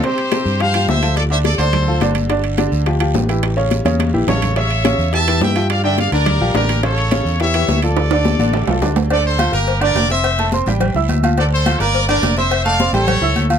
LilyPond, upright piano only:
\new Staff \with { instrumentName = "Upright piano" } { \time 4/4 \key d \minor \tempo 4 = 212 <c c' c''>4 <c c' c''>4 <f f' g'>8 <f f' g'>4 <f f' a'>8~ | <f f' a'>8 <d d' d''>4 <d d' d''>4 <f f' a'>8 <d d' d''>4 | <d d' d''>4 <d d' d''>4 <f f' g'>8 <f f' g'>4 <e e' g'>8~ | <e e' g'>8 <cis cis' cis''>4 <cis cis' cis''>4 <e e' g'>8 <cis cis' cis''>4 |
<cis cis' cis''>4 <cis cis' cis''>4 <e e' g'>8 <e e' g'>4 <f f' g'>8~ | <f f' g'>8 <d d' d''>4 <d d' d''>4 <f f' g'>8 <d d' d''>4 | <cis cis' cis''>4 <cis cis' cis''>4 <e e' g'>8 <e e' g'>4 <f f' a'>8~ | <f f' a'>8 <d d' d''>4 <d d' d''>4 <f f' a'>8 <d d' d''>4 |
<d d' d''>4 <f f' f''>8 <bes bes' bes''>4 <d d' d''>4 <c' c'' c'''>8~ | <c' c'' c'''>8 <a a' a''>8 <c' c'' c'''>8 <g g' g''>4 <e' e'' e'''>4 <f f' f''>8 | <d d' d''>4 <f f' f''>8 <bes bes' bes''>4 <d d' d''>4 <c' c'' c'''>8~ | <c' c'' c'''>8 <a a' a''>8 <c' c'' c'''>8 <g g' g''>4 <e' e'' e'''>4 <f f' f''>8 | }